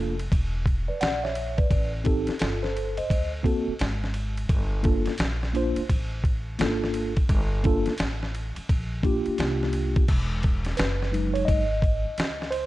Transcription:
0.00 0.28 F1 medium
0.00 0.14 A#3 medium
0.00 0.14 D4 medium
0.00 0.15 F4 medium
0.00 0.18 A4 medium
0.19 ride soft
0.32 0.86 E1 medium
0.32 kick medium
0.32 ride medium
0.66 kick medium
0.66 ride soft
0.88 1.01 B4 soft
0.88 1.00 D5 medium
0.88 muted upright bass stroke soft
1.01 1.68 A#1 medium
1.01 1.22 D5 medium
1.01 1.22 F#5 medium
1.01 snare loud
1.01 hi-hat pedal soft
1.01 ride medium
1.24 1.57 C#5 medium
1.24 1.57 E5 medium
1.24 snare soft
1.35 ride medium
1.57 1.91 B4 medium
1.57 1.91 D5 medium
1.57 kick medium
1.57 ride soft
1.71 2.25 A1 medium
1.71 kick loud
1.71 ride medium
2.04 2.32 C4 medium
2.04 2.33 D#4 medium
2.04 2.33 G4 medium
2.04 2.34 A4 medium
2.04 kick medium
2.04 ride medium
2.27 muted upright bass stroke soft
2.27 snare soft
2.27 ride soft
2.39 2.95 G1 medium
2.39 2.62 F4 soft
2.39 2.62 A4 medium
2.39 snare loud
2.39 hi-hat pedal medium
2.39 ride medium
2.63 2.96 A4 medium
2.63 2.96 C5 medium
2.63 snare soft
2.77 ride soft
2.97 3.31 C5 soft
2.97 3.31 D#5 medium
2.97 muted upright bass stroke soft
2.97 ride soft
3.10 3.65 D2 medium
3.10 kick medium
3.10 ride medium
3.43 3.72 A#3 medium
3.43 3.72 C4 medium
3.43 3.72 F#4 medium
3.43 3.73 A4 medium
3.43 kick medium
3.43 ride medium
3.68 muted upright bass stroke soft
3.79 4.47 G#1 medium
3.79 snare loud
3.79 hi-hat pedal soft
3.79 ride medium
4.04 snare soft
4.14 ride medium
4.37 ride soft
4.49 5.04 G1 loud
4.49 kick loud
4.49 ride medium
4.83 5.11 A#3 medium
4.83 5.11 D4 medium
4.83 5.12 F4 medium
4.83 5.12 A4 medium
4.83 kick medium
4.83 ride medium
5.06 muted upright bass stroke soft
5.06 snare soft
5.06 ride soft
5.18 5.74 A#1 medium
5.18 snare loud
5.18 hi-hat pedal medium
5.18 ride medium
5.43 snare soft
5.54 5.81 A#3 medium
5.54 5.82 D4 medium
5.54 5.83 F4 medium
5.54 5.83 C5 medium
5.54 ride soft
5.76 muted upright bass stroke soft
5.76 ride medium
5.90 6.56 A1 medium
5.90 kick medium
5.90 ride medium
6.24 kick medium
6.24 ride soft
6.59 7.26 G#1 medium
6.59 7.12 A#3 medium
6.59 7.12 D4 medium
6.59 7.12 F4 medium
6.59 7.13 A4 medium
6.59 snare loud
6.59 hi-hat pedal soft
6.59 ride medium
6.84 snare soft
6.94 ride medium
7.17 kick medium
7.17 ride medium
7.29 7.83 G1 loud
7.29 kick loud
7.29 ride medium
7.64 7.91 A#3 medium
7.64 7.92 D4 medium
7.64 7.92 F4 medium
7.64 7.92 A4 loud
7.64 kick medium
7.64 ride medium
7.86 muted upright bass stroke soft
7.86 snare soft
7.86 ride soft
7.98 8.53 A1 medium
7.98 snare loud
7.98 hi-hat pedal medium
7.98 ride medium
8.23 snare soft
8.35 ride soft
8.56 muted upright bass stroke soft
8.56 ride soft
8.69 9.23 A#1 medium
8.69 kick loud
8.69 ride medium
9.03 10.03 A#3 medium
9.03 10.03 D4 medium
9.03 10.04 F4 medium
9.03 10.04 G4 medium
9.03 kick medium
9.03 ride medium
9.26 muted upright bass stroke soft
9.26 ride soft
9.38 10.05 C2 medium
9.38 snare medium
9.38 hi-hat pedal soft
9.38 ride medium
9.63 snare soft
9.73 ride medium
9.96 kick loud
9.96 ride soft
10.08 10.75 E1 loud
10.08 kick loud
10.08 crash medium
10.08 ride medium
10.43 kick medium
10.43 ride medium
10.65 snare soft
10.65 ride soft
10.77 11.45 F#1 medium
10.77 11.36 B4 medium
10.77 snare loud
10.77 hi-hat pedal medium
10.77 ride medium
11.02 snare soft
11.12 11.62 F#3 soft
11.12 11.63 G#3 soft
11.12 11.63 D#4 medium
11.12 ride soft
11.34 11.47 C#5 medium
11.34 ride soft
11.45 12.02 G#1 medium
11.45 12.54 D#5 medium
11.45 kick medium
11.45 ride medium
11.82 kick medium
11.82 ride soft
12.05 muted upright bass stroke soft
12.18 12.66 C#2 medium
12.18 snare loud
12.18 hi-hat pedal soft
12.18 ride medium
12.42 snare soft
12.51 12.66 C5 medium
12.51 ride medium

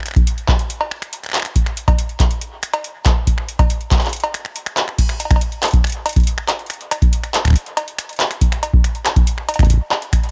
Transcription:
0.00 finger snap soft
0.03 finger snap soft
0.06 finger snap soft
0.06 closed hi-hat medium
0.08 finger snap soft
0.11 finger snap soft
0.14 finger snap soft
0.14 kick loud
0.14 closed hi-hat soft
0.27 closed hi-hat medium
0.38 closed hi-hat soft
0.48 kick loud
0.48 clap loud
0.59 closed hi-hat medium
0.70 closed hi-hat medium
0.81 cowbell medium
0.91 finger snap medium
1.02 finger snap medium
1.02 closed hi-hat medium
1.13 closed hi-hat medium
1.24 finger snap soft
1.24 closed hi-hat soft
1.26 finger snap soft
1.29 finger snap soft
1.32 finger snap medium
1.34 finger snap medium
1.34 clap loud
1.34 closed hi-hat medium
1.37 finger snap medium
1.40 finger snap medium
1.42 finger snap medium
1.45 finger snap medium
1.45 closed hi-hat soft
1.56 kick medium
1.56 closed hi-hat medium
1.66 finger snap medium
1.66 closed hi-hat soft
1.77 closed hi-hat medium
1.88 kick loud
1.88 closed hi-hat soft
1.88 cowbell loud
1.99 closed hi-hat medium
2.09 closed hi-hat soft
2.20 kick loud
2.20 clap loud
2.20 closed hi-hat medium
2.31 closed hi-hat medium
2.41 closed hi-hat medium
2.63 finger snap medium
2.63 closed hi-hat medium
2.74 finger snap medium
2.74 closed hi-hat medium
2.74 cowbell loud
2.84 closed hi-hat medium
3.06 finger snap medium
3.06 kick loud
3.06 clap loud
3.06 closed hi-hat medium
3.27 kick medium
3.27 closed hi-hat medium
3.38 finger snap medium
3.49 closed hi-hat medium
3.59 kick loud
3.59 closed hi-hat medium
3.59 cowbell loud
3.70 closed hi-hat medium
3.81 closed hi-hat soft
3.91 kick loud
3.91 clap loud
3.91 closed hi-hat medium
3.99 clap medium
3.99 closed hi-hat soft
4.06 clap medium
4.06 closed hi-hat soft
4.09 closed hi-hat soft
4.13 closed hi-hat medium
4.16 closed hi-hat soft
4.20 closed hi-hat soft
4.24 closed hi-hat soft
4.24 cowbell medium
4.34 finger snap medium
4.34 closed hi-hat medium
4.45 finger snap medium
4.56 closed hi-hat medium
4.66 finger snap medium
4.66 closed hi-hat soft
4.77 clap loud
4.77 closed hi-hat medium
4.88 finger snap medium
4.99 kick medium
4.99 closed hi-hat medium
4.99 crash loud
5.09 finger snap medium
5.09 closed hi-hat soft
5.20 closed hi-hat medium
5.20 cowbell soft
5.25 cowbell soft
5.31 finger snap medium
5.31 kick loud
5.31 closed hi-hat medium
5.31 cowbell medium
5.36 cowbell medium
5.41 closed hi-hat medium
5.52 closed hi-hat soft
5.63 finger snap medium
5.63 clap loud
5.63 closed hi-hat medium
5.65 closed hi-hat medium
5.71 kick loud
5.71 closed hi-hat soft
5.74 closed hi-hat medium
5.84 finger snap medium
5.84 closed hi-hat soft
5.87 closed hi-hat soft
5.90 closed hi-hat medium
5.92 closed hi-hat medium
6.06 closed hi-hat medium
6.06 cowbell medium
6.09 closed hi-hat medium
6.13 closed hi-hat medium
6.16 kick loud
6.16 closed hi-hat medium
6.20 closed hi-hat soft
6.24 closed hi-hat soft
6.27 closed hi-hat medium
6.38 finger snap medium
6.49 clap loud
6.49 closed hi-hat medium
6.49 cowbell medium
6.59 closed hi-hat soft
6.66 finger snap medium
6.66 closed hi-hat soft
6.70 closed hi-hat medium
6.74 closed hi-hat soft
6.81 closed hi-hat soft
6.91 finger snap medium
6.91 closed hi-hat medium
6.91 cowbell medium
7.02 kick loud
7.02 closed hi-hat medium
7.13 closed hi-hat medium
7.24 finger snap medium
7.24 closed hi-hat soft
7.34 clap loud
7.34 closed hi-hat medium
7.45 finger snap medium
7.45 kick medium
7.45 closed hi-hat medium
7.48 finger snap medium
7.48 kick medium
7.50 finger snap medium
7.50 kick medium
7.53 finger snap soft
7.53 kick medium
7.53 closed hi-hat medium
7.66 closed hi-hat soft
7.77 finger snap medium
7.77 closed hi-hat medium
7.77 cowbell medium
7.88 closed hi-hat medium
7.99 finger snap medium
7.99 closed hi-hat medium
8.09 closed hi-hat soft
8.13 closed hi-hat soft
8.16 clap loud
8.16 closed hi-hat soft
8.20 closed hi-hat medium
8.24 closed hi-hat soft
8.27 finger snap medium
8.27 closed hi-hat soft
8.31 closed hi-hat medium
8.41 kick medium
8.41 closed hi-hat medium
8.52 finger snap medium
8.52 closed hi-hat soft
8.63 closed hi-hat medium
8.63 cowbell medium
8.74 kick loud
8.84 finger snap medium
8.84 closed hi-hat medium
8.95 closed hi-hat soft
9.06 finger snap medium
9.06 clap loud
9.06 closed hi-hat medium
9.16 kick loud
9.16 closed hi-hat medium
9.27 closed hi-hat medium
9.38 finger snap soft
9.49 closed hi-hat medium
9.49 cowbell medium
9.54 closed hi-hat medium
9.54 cowbell medium
9.59 finger snap medium
9.59 kick loud
9.59 closed hi-hat medium
9.63 kick loud
9.63 closed hi-hat soft
9.63 cowbell medium
9.66 kick medium
9.70 kick medium
9.70 closed hi-hat medium
9.74 kick medium
9.77 kick soft
9.91 finger snap medium
9.91 clap loud
9.91 cowbell medium
10.02 closed hi-hat medium
10.13 finger snap medium
10.13 kick medium
10.13 closed hi-hat medium
10.24 closed hi-hat soft

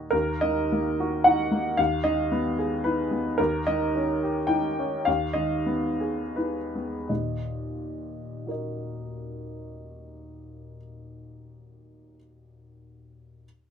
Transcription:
0.00 0.13 D#2 soft
0.00 0.15 D#3 soft
0.00 0.15 A#3 soft
0.00 0.15 F#4 soft
0.00 0.15 D#5 medium
0.11 1.74 D#2 soft
0.11 0.42 A#4 medium
0.41 0.87 D#3 soft
0.41 1.24 D#5 medium
0.72 1.15 A#3 soft
1.00 1.42 F#4 soft
1.24 1.68 D#4 soft
1.24 1.78 F#5 medium
1.51 1.78 A#3 soft
1.77 3.34 D#2 soft
1.77 2.04 F5 medium
2.04 2.47 D#3 soft
2.04 2.83 D#5 medium
2.32 2.73 B3 soft
2.58 3.00 G#4 soft
2.84 3.27 D#4 soft
2.84 3.38 B4 medium
3.11 3.38 B3 soft
3.38 5.03 D#2 medium
3.38 3.66 A#4 medium
3.67 4.11 D#3 soft
3.67 4.49 D#5 medium
3.95 4.39 C#4 soft
4.23 4.67 G4 soft
4.47 4.94 D#4 soft
4.47 5.05 G5 medium
4.79 5.07 C#4 soft
5.05 7.05 D#2 soft
5.05 5.35 F5 medium
5.33 5.87 D#3 soft
5.33 6.35 D#5 medium
5.66 6.21 B3 soft
6.00 6.58 G#4 soft
6.36 6.96 D#4 soft
6.36 7.09 B4 soft
6.75 7.10 B3 soft
7.09 10.77 D#2 soft
7.09 10.77 A#2 soft
7.09 8.50 D#5 soft
8.47 12.14 F#4 soft
8.47 12.15 A#4 soft
8.51 12.18 D#5 soft

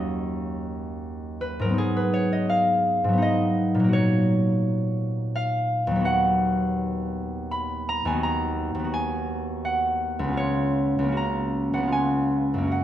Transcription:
0.00 1.71 D#2 medium
0.00 1.63 F#3 soft
0.00 1.75 A#3 soft
0.00 3.45 F#4 soft
0.00 1.29 A#4 medium
0.00 2.31 D#5 medium
1.41 1.72 B4 medium
1.59 3.03 G#2 medium
1.59 1.91 A#4 medium
1.64 3.07 F#3 soft
1.69 3.12 B3 soft
1.73 3.16 D#4 soft
1.78 3.96 G#4 medium
1.96 2.26 B4 medium
2.14 2.43 C#5 medium
2.33 2.62 D#5 medium
2.49 3.71 F5 medium
3.04 3.88 G#2 medium
3.09 3.78 F#3 soft
3.13 3.92 B3 soft
3.18 3.94 D#4 soft
3.22 3.97 D#5 medium
3.75 5.98 A#2 medium
3.79 5.90 F#3 soft
3.84 6.03 A#3 soft
3.89 5.99 F#4 soft
3.93 6.07 C#5 medium
5.36 6.53 F5 medium
5.87 8.04 D#2 medium
5.87 9.81 F#3 soft
5.96 8.09 B3 soft
6.00 8.12 F#4 soft
6.05 9.64 F#5 medium
7.51 11.19 B5 medium
7.89 8.19 A#5 medium
8.05 8.73 D#2 medium
8.05 8.36 G#5 medium
8.10 8.78 B3 soft
8.10 8.83 F#4 soft
8.23 9.43 A#5 medium
8.75 10.31 D#2 soft
8.79 10.22 B3 soft
8.84 10.36 F#4 soft
8.94 11.20 G#5 medium
9.65 10.40 F#5 medium
10.19 10.97 C#2 soft
10.23 11.13 B3 soft
10.28 11.07 C#4 soft
10.33 11.17 F4 soft
10.37 12.84 C#5 medium
10.99 11.72 C#2 soft
11.03 11.88 A#3 soft
11.08 11.82 C#4 soft
11.08 11.92 F#4 soft
11.17 11.95 A#5 medium
11.73 12.66 C#2 soft
11.73 12.05 F#5 medium
11.78 12.68 B3 soft
11.83 12.62 C#4 soft
11.88 12.73 F4 soft
11.92 12.75 G#5 medium
12.54 12.84 F#2 soft
12.58 12.84 A#3 soft
12.63 12.84 C#4 soft
12.67 12.84 F#4 soft
12.72 12.84 F#5 medium

